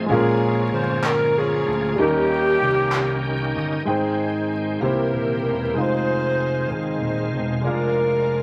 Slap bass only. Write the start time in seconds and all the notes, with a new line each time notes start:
0.09 A#1
0.72 G1
1.66 D2
1.98 D#2
2.62 C2
3.56 G1
3.86 G#1
4.81 C2
5.13 D#1
5.45 E1
5.76 F1
6.70 G#1
7.01 D#1
7.33 E1
7.64 F1